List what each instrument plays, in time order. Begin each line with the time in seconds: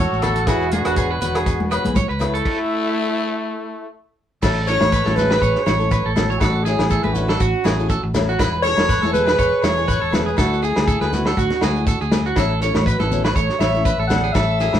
Already playing: horn section F#4 A4
0.00 trumpet F#4, clean electric guitar C#5
0.11 fingered electric bass A1, shekere
0.22 steel-string acoustic guitar F#3 C#4 E4 A4, clean electric guitar A4, cross-stick, closed hi-hat, low conga, low agogo, shekere
0.36 closed hi-hat, shekere
0.47 fingered electric bass E1, steel-string acoustic guitar F#3 B3 F#4 G#4, horn section E4 G#4, trumpet E4, clean electric guitar F#4, kick, cross-stick, closed hi-hat, low agogo, shekere
0.61 shekere
0.70 trumpet B3, horn section D4 F#4, clean electric guitar G#4, closed hi-hat, high conga, shekere
0.85 fingered electric bass E1, steel-string acoustic guitar B3 F#4 G#4, clean electric guitar F#4, cross-stick, closed hi-hat, low agogo, shekere
0.96 steel-string acoustic guitar F#3 B3 F#4 G#4, clean electric guitar G#4, kick, closed hi-hat, shekere
1.11 clean electric guitar B4
1.21 fingered electric bass E1, steel-string acoustic guitar F#3 B3 F#4 G#4, trumpet B3, horn section D4 F#4, clean electric guitar B4, closed hi-hat, low conga, shekere
1.35 clean electric guitar G#4, cross-stick, closed hi-hat, low agogo, shekere
1.46 kick, closed hi-hat, shekere
1.60 high conga
1.71 steel-string acoustic guitar F#3 B3 F#4 G#4, clean electric guitar B4, cross-stick, closed hi-hat, low agogo, shekere
1.84 fingered electric bass B1, steel-string acoustic guitar B3 F#4 G#4, closed hi-hat, high conga, low conga, shekere
1.96 clean electric guitar C#5, kick, closed hi-hat, high conga, shekere
2.09 fingered electric bass C#2, clean electric guitar B4, shekere
2.19 steel-string acoustic guitar F#3 B3 F#4 G#4, horn section A3 E4, trumpet A3, cross-stick, closed hi-hat, low conga, low agogo, shekere
2.34 clean electric guitar A4, closed hi-hat, shekere
2.45 kick, crash
4.42 fingered electric bass A1, steel-string acoustic guitar F#3 C#4 E4 A4, clean electric guitar A4, kick, snare, crash, low agogo, shekere
4.67 steel-string acoustic guitar F#3 C#4 E4 A4, horn section A4 C#5, clean electric guitar C#5, snare, shekere
4.81 fingered electric bass A1, snare, high conga, low agogo, shekere
4.92 clean electric guitar B4, kick, shekere
5.05 fingered electric bass A1, steel-string acoustic guitar C#4 E4 A4, clean electric guitar A4, snare, high conga
5.16 steel-string acoustic guitar F#3 C#4 E4 A4, horn section G#4 B4, snare, high conga, low conga, shekere
5.30 clean electric guitar B4, snare, low agogo, shekere
5.42 fingered electric bass A1, clean electric guitar C#5, kick, shekere
5.55 snare
5.64 fingered electric bass A1, steel-string acoustic guitar F#3 C#4 E4, horn section A4 C#5, clean electric guitar C#5, snare, high conga, low agogo, shekere
5.68 steel-string acoustic guitar A4
5.79 steel-string acoustic guitar C#4 E4 A4, shekere
5.91 clean electric guitar B4, kick, shekere
6.05 fingered electric bass A1, clean electric guitar A4
6.15 steel-string acoustic guitar F#3 C#4 E4, horn section F#4 A4, muted steel-string acoustic guitar stroke, snare, high conga, low conga, low agogo, shekere
6.30 clean electric guitar C#5, shekere
6.39 fingered electric bass A1, horn section C#4 F#4, clean electric guitar A4, kick, snare, low agogo, shekere
6.64 steel-string acoustic guitar F#3 C#4 E4, horn section E4 G#4, clean electric guitar G#4, snare, shekere
6.68 steel-string acoustic guitar A4
6.79 fingered electric bass A1, snare, low agogo, shekere
6.90 clean electric guitar A4, kick, shekere
7.03 fingered electric bass A1, steel-string acoustic guitar C#4 E4 A4, clean electric guitar B4, high conga
7.13 steel-string acoustic guitar F#3 C#4 E4 A4, horn section D4 F#4, high conga, low conga, shekere
7.28 clean electric guitar A4, snare, low agogo, shekere
7.38 fingered electric bass A1, horn section C#4 F#4, clean electric guitar F#4, kick, shekere
7.64 fingered electric bass A1, steel-string acoustic guitar F#3 C#4 E4 A4, clean electric guitar G#4, snare, high conga, low agogo, shekere
7.78 steel-string acoustic guitar C#4 E4 A4, shekere
7.90 clean electric guitar A4, kick, shekere
8.03 fingered electric bass A1, muted clean electric guitar stroke
8.14 steel-string acoustic guitar F#3 C#4 E4 A4, snare, high conga, low conga, low agogo, shekere
8.29 clean electric guitar F#4, shekere
8.39 fingered electric bass E1, steel-string acoustic guitar F#3 B3 E4 G#4, clean electric guitar B4, kick, snare, low agogo, shekere
8.63 steel-string acoustic guitar F#3 B3 E4 G#4, horn section A4 C#5, clean electric guitar C#5, snare, shekere
8.76 fingered electric bass E1, snare, high conga, low agogo
8.89 clean electric guitar B4, kick, shekere
9.02 fingered electric bass E1, steel-string acoustic guitar B3 E4 G#4, clean electric guitar A4, high conga
9.13 steel-string acoustic guitar F#3 B3 E4 G#4, horn section G#4 B4, high conga, low conga, shekere
9.26 clean electric guitar B4, snare, low agogo, shekere
9.38 fingered electric bass E1, clean electric guitar C#5, kick, shekere
9.62 fingered electric bass E1, steel-string acoustic guitar F#3 B3 E4 G#4, horn section A4 C#5, clean electric guitar C#5, snare, high conga, low agogo, shekere
9.77 steel-string acoustic guitar B3 E4 G#4, shekere
9.88 clean electric guitar B4, kick, shekere
10.01 fingered electric bass E1, clean electric guitar A4
10.12 steel-string acoustic guitar F#3 B3 E4 G#4, horn section G#4 B4, snare, high conga, low conga, low agogo, shekere
10.26 clean electric guitar G#4, shekere
10.37 fingered electric bass D2, steel-string acoustic guitar A3 E4 A4, horn section D4 F#4, clean electric guitar A4, kick, snare, low agogo, shekere
10.53 shekere
10.62 steel-string acoustic guitar A3 E4 A4, horn section E4 G#4, clean electric guitar G#4, shekere
10.76 fingered electric bass D2, snare, low agogo
10.88 clean electric guitar A4, kick, shekere
11.01 fingered electric bass D2, steel-string acoustic guitar E4 A4, clean electric guitar B4, snare, high conga
11.13 steel-string acoustic guitar A3 E4 A4, horn section D4 F#4, snare, high conga, low conga, shekere
11.25 clean electric guitar A4, snare, low agogo, shekere
11.37 fingered electric bass D2, horn section D4 F#4, clean electric guitar F#4, kick, shekere
11.51 snare, low conga, shekere
11.61 fingered electric bass D2, steel-string acoustic guitar A3 E4 A4, clean electric guitar G#4, snare, high conga, low agogo, shekere
11.76 steel-string acoustic guitar E4 A4, shekere
11.87 clean electric guitar A4, kick, shekere
12.01 fingered electric bass D2, clean electric guitar G#4, shekere
12.11 steel-string acoustic guitar A3 E4, snare, high conga, low conga, low agogo, shekere
12.26 clean electric guitar F#4, shekere
12.36 fingered electric bass A1, steel-string acoustic guitar F#3 C#4 E4 A4, clean electric guitar A4, kick, snare, low agogo, shekere
12.61 steel-string acoustic guitar C#4 E4 A4, clean electric guitar C#5, muted steel-string acoustic guitar stroke, snare, shekere
12.75 fingered electric bass A1, snare, high conga, low agogo, shekere
12.86 horn section F#4 B4, clean electric guitar B4, kick, shekere
13.00 fingered electric bass A1, steel-string acoustic guitar C#4 E4 A4, clean electric guitar A4, snare, high conga
13.12 steel-string acoustic guitar F#3 C#4 E4 A4, high conga, low conga, shekere
13.24 horn section A4 C#5, clean electric guitar B4, snare, low agogo, shekere
13.35 fingered electric bass A1, horn section A4 C#5, clean electric guitar C#5, kick, shekere
13.49 snare
13.59 fingered electric bass A1, steel-string acoustic guitar C#4 E4 A4, clean electric guitar C#5, horn section C#5 E5, muted steel-string acoustic guitar stroke, snare, high conga, low agogo, shekere
13.74 steel-string acoustic guitar C#4 E4 A4, shekere
13.85 clean electric guitar B4, kick, shekere
13.98 fingered electric bass A1, clean electric guitar A4
14.08 steel-string acoustic guitar F#3 C#4, horn section D5 F#5, snare, high conga, low conga, low agogo, shekere
14.12 steel-string acoustic guitar E4 A4
14.24 clean electric guitar G#4, shekere
14.33 fingered electric bass A1, clean electric guitar A4, horn section C#5 E5, kick, snare, low agogo, shekere
14.60 steel-string acoustic guitar F#3 C#4 E4 A4, clean electric guitar G#4, snare, shekere
14.72 fingered electric bass A1, snare, high conga, low agogo, shekere